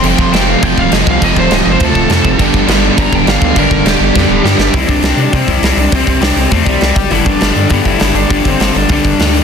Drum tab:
CC |x-x-x-x-|x-x-x-x-|x-x-x-x-|x-x-----|
HH |--------|--------|--------|--------|
SD |--o---o-|--o---o-|--o---o-|--o-o-oo|
BD |-o--oo-o|oo--oo-o|oo--oo-o|oo--o---|

CC |--------|--------|--------|--------|
HH |oooooooo|oooooooo|o-oooooo|oooooooo|
SD |--o---o-|--o---o-|--o---o-|--o---o-|
BD |oo--oo--|oo--oo-o|-o--oo--|oo--oo--|